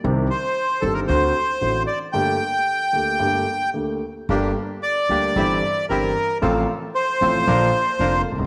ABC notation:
X:1
M:4/4
L:1/16
Q:1/4=114
K:Gm
V:1 name="Bandoneon"
z2 c4 A B c6 d2 | g12 z4 | z4 d8 B4 | z4 c8- c2 z2 |]
V:2 name="Bandoneon"
z16 | z16 | [B,DG]2 z4 [B,DG]2 [C=EG]2 z2 [CEG]2 z2 | [CFA]2 z4 [CFA]2 [DFB]2 z2 [DFB]2 z2 |]
V:3 name="Grand piano" clef=bass
[C,,C,E,G,CG]2 z4 [G,,,G,,E,G,CG]2 [D,,D,A,C^F]2 z2 [A,,,A,,D,A,CF]2 z2 | [G,,,G,,D,A,B,G]2 z4 [D,,D,A,B,G]2 [G,,,G,,D,A,B,G]2 z2 [D,,D,A,B,G]2 z2 | [G,,,G,,D,G,B,G]2 z4 [D,,D,G,B,G]2 [G,,,G,,=E,G,CG]2 z2 [G,,,G,,E,G,CG]2 z2 | [A,,,A,,C,F,A,F]2 z4 [A,,,A,,C,F,A,F]2 [B,,,B,,D,F,B,F]2 z2 [F,,,F,,D,F,B,F]2 z/2 C,,/2 ^C,,/2 z/2 |]
V:4 name="Upright bass" clef=bass
C,,3/2 z4 z/2 G,,,3/2 z/2 D,,3/2 z2 z/2 A,,,3/2 z2 z/2 | z16 | G,,,3/2 z4 z/2 D,,3/2 z/2 G,,,3/2 z2 z/2 G,,,3/2 z2 z/2 | A,,,3/2 z4 z/2 A,,,3/2 z/2 B,,,3/2 z2 z/2 F,,,3/2 z C,,/2 ^C,,/2 z/2 |]